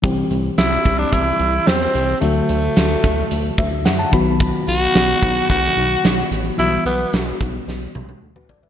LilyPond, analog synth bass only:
\new Staff \with { instrumentName = "Analog synth bass" } { \clef bass \time 4/4 \key c \lydian \tempo 4 = 110 c,8 c,8 c,8 c,8 c,8 c,8 e,8 c,8 | d,8 d,8 d,8 d,8 d,8 d,8 fis,8 b,,8~ | b,,8 b,,8 b,,8 b,,8 b,,8 b,,8 b,,8 a,,8 | b,,8 b,,8 b,,8 b,,8 b,,8 b,,8 d,8 a,,8 | }